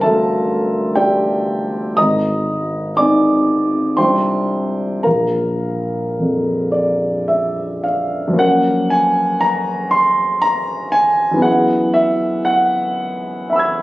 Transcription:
Already playing: G1 A#4 C5 F5 G5 A#5 C6
0.01 D2 A4 E5 A5
0.96 G4 D5 G5
1.97 G#1 D#5 A#5 D#6
2.97 C4 D#4 D5 G#5 D6
3.97 C2 D4 F4 C5 G5 C6
5.03 A#1 A#4 F5 A#5
6.20 F2
6.72 D5
7.28 E5
7.84 F5
8.28 F#2 F3
8.33 A#3 C#4
8.38 A#4 F#5
8.90 G#5
9.41 A#5
9.91 C6
10.42 A#5
10.92 G#5
11.31 F#2 E3
11.37 B3 E4
11.42 G#4 F#5
11.94 E5
12.45 F#5
13.50 E5 B5
13.56 E6 G#6

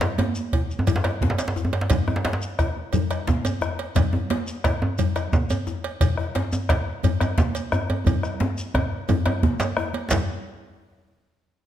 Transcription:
0.01 bombo rim, djembe slap, djembe tone, shekere
0.18 cowbell, djembe slap, djembe tone, high conga
0.35 djembe slap, shekere
0.53 bombo low, cowbell, high conga, djembe tone
0.71 djembe slap, high conga, shekere
0.79 djembe tone
0.87 cowbell, djembe slap, high conga, low conga, djembe bass, shekere
0.96 djembe slap
1.04 bombo rim, cowbell, djembe slap, high conga, djembe tone
1.21 bombo rim, bombo low, djembe slap, djembe tone, high conga
1.30 djembe slap
1.38 cowbell, djembe slap, shekere
1.48 djembe slap
1.56 djembe slap, djembe tone, high conga, shekere
1.65 djembe tone
1.73 cowbell, djembe slap
1.81 djembe slap
1.90 bombo low, cowbell, djembe slap, high conga, djembe bass, low conga, shekere
2.07 bombo rim, djembe tone
2.16 djembe slap
2.25 cowbell, djembe slap
2.33 djembe slap
2.42 high conga, shekere
2.59 bombo rim, bombo low, cowbell, djembe tone, shekere
2.77 high conga
2.93 cowbell, djembe slap, djembe bass, low conga, shekere
3.10 bombo rim, cowbell, djembe slap, djembe tone, shekere
3.27 bombo low, djembe slap, high conga, shekere
3.45 cowbell, djembe tone, shekere
3.61 bombo rim, djembe slap, djembe tone, high conga, shekere
3.79 bombo rim, cowbell, high conga
3.95 bombo low, cowbell, djembe slap, high conga, djembe bass, low conga, shekere
4.13 djembe tone
4.30 cowbell, djembe slap, high conga
4.47 high conga, shekere
4.64 bombo rim, bombo low, cowbell, djembe slap, djembe tone, shekere
4.82 high conga, djembe tone
4.98 cowbell, djembe slap, low conga, djembe bass, shekere
5.16 bombo rim, cowbell, djembe slap, djembe tone, shekere
5.33 bombo low, djembe slap, high conga, shekere
5.50 cowbell, djembe tone, shekere
5.67 djembe slap, djembe tone, high conga, shekere
5.84 bombo rim, cowbell, high conga
6.01 bombo low, cowbell, djembe slap, high conga, djembe bass, low conga, shekere
6.17 bombo rim, djembe tone
6.35 cowbell, djembe slap, djembe tone
6.52 high conga, djembe tone, shekere
6.69 bombo rim, bombo low, cowbell, djembe slap, djembe tone, shekere
6.87 high conga
7.03 cowbell, djembe slap, djembe tone, low conga, djembe bass, shekere
7.20 bombo rim, cowbell, djembe slap, djembe tone, shekere
7.38 bombo low, djembe slap, high conga, shekere
7.55 cowbell, shekere
7.72 bombo rim, djembe slap, djembe tone, high conga, shekere
7.89 bombo rim, cowbell, high conga, djembe tone
8.06 bombo low, cowbell, djembe tone, djembe bass, low conga, shekere
8.23 bombo rim, djembe slap, djembe tone, shekere
8.40 djembe slap, djembe tone, high conga
8.58 djembe slap, shekere
8.74 bombo rim, bombo low, cowbell, djembe slap, djembe tone
8.92 djembe slap
9.09 cowbell, djembe tone, djembe bass, low conga, shekere
9.26 bombo rim, cowbell, djembe tone
9.43 bombo low, djembe slap, high conga
9.60 cowbell, djembe slap, low conga, shekere
9.77 bombo rim, high conga, djembe tone
9.94 bombo rim, cowbell, djembe slap, high conga
10.11 bombo low, cowbell, djembe slap, djembe bass, low conga, shekere

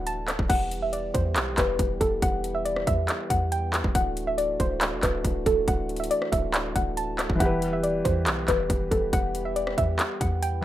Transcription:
Already playing: D1 D3 E3 A3 D4 E4 F#4
0.07 A5, closed hi-hat
0.28 cross-stick, clap, closed hi-hat
0.39 D1, kick
0.49 E1 E3 G3 B3 G4 F#5, kick, closed hi-hat, crash
0.71 closed hi-hat
0.82 E5
0.93 D5, closed hi-hat
1.14 E2 C5, kick, closed hi-hat
1.36 B1, clap, closed hi-hat
1.58 E1 B4, kick, clap, closed hi-hat
1.79 E1, kick, closed hi-hat
2.01 E1 A4, kick, closed hi-hat
2.22 E1 F#5, kick, closed hi-hat
2.44 closed hi-hat
2.55 E5
2.65 D5, closed hi-hat
2.76 cross-stick
2.87 E2 E5, kick, closed hi-hat
3.08 clap, closed hi-hat
3.30 E2 F#5, kick, closed hi-hat
3.52 G5, closed hi-hat
3.73 clap, closed hi-hat
3.84 E1, kick
3.95 D1 E3 A3 D4 F#4 F#5, kick, closed hi-hat
4.17 closed hi-hat
4.27 E5
4.38 D5, closed hi-hat
4.60 D1 C5, kick, closed hi-hat
4.81 clap, closed hi-hat
4.92 E1
5.03 D1 B4, kick, clap, closed hi-hat
5.25 D1, kick, closed hi-hat
5.46 D1 A4, kick, closed hi-hat
5.68 D1 F#5, kick, closed hi-hat
5.89 closed hi-hat
5.96 E5, closed hi-hat
6.04 closed hi-hat
6.11 D5, closed hi-hat
6.22 cross-stick
6.32 D1 E5, kick, closed hi-hat
6.54 clap, closed hi-hat
6.76 D1 F#5, kick, closed hi-hat
6.97 A5, closed hi-hat
7.19 cross-stick, clap, closed hi-hat
7.30 D1, kick
7.35 E3 E4
7.40 E1 E3 G3 B3 G4 F#5, kick, closed hi-hat
7.45 B4
7.62 closed hi-hat
7.73 E5
7.83 D5, closed hi-hat
8.05 E2 C5, kick, closed hi-hat
8.26 B1, clap, closed hi-hat
8.48 E1 B4, kick, clap, closed hi-hat
8.70 E1, kick, closed hi-hat
8.91 E1 A4, kick, closed hi-hat
9.13 E1 F#5, kick, closed hi-hat
9.35 closed hi-hat
9.45 E5
9.56 D5, closed hi-hat
9.67 cross-stick
9.78 E2 E5, kick, closed hi-hat
9.99 clap, closed hi-hat
10.21 E2 F#5, kick, closed hi-hat
10.43 G5, closed hi-hat
10.61 E3

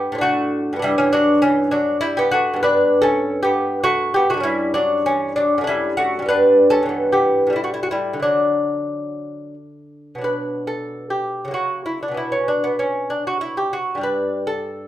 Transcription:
Already playing: G2 G3 B3 G4
0.12 A2 C4
0.18 D4 F#4
0.23 A3
0.73 G2 B3
0.79 D4 E4
0.84 G3
0.98 E3 C#4
1.13 F#3 D4
1.42 E3 C#4
1.71 F#3 D4
2.01 G3 E4
2.17 B3 G4
2.31 A3 F#4
2.54 G2 B3
2.63 D4 B4
3.02 C#4 A4
3.43 B3 G4
3.84 A3 F#4
4.14 B3 G4
4.30 A3 F#4
4.34 G2 A3
4.40 C#4 E4
4.45 G3
4.74 F#3 D4
5.06 E3 C#4
5.36 F#3 D4
5.58 F#2 A3
5.64 D4 E4
5.69 G3
5.97 A3 F#4
6.19 G2 G3
6.26 B3 B4
6.30 D4
6.70 C#4 A4
6.83 G2 E3
6.89 B3
7.12 B3 G4
7.47 A2 G3
7.53 A3 E4
7.64 F#4
7.74 E4
7.83 F#4
7.91 G3 E4
8.13 D3
8.20 F#3 A3 D4
10.15 B2 F#3
10.21 D4 B4
10.67 A4
11.10 G4
11.45 C#3 F#3
11.51 A#3 F#4
11.86 E4
12.03 D4
12.08 B2 F#3
12.14 B3 E4
12.32 C#4
12.48 D4
12.64 B3
12.79 C#4
13.10 D4
13.27 F#4
13.41 E4
13.57 G4
13.73 F#4
13.95 G2 G3
14.01 D4 B4
14.47 A4

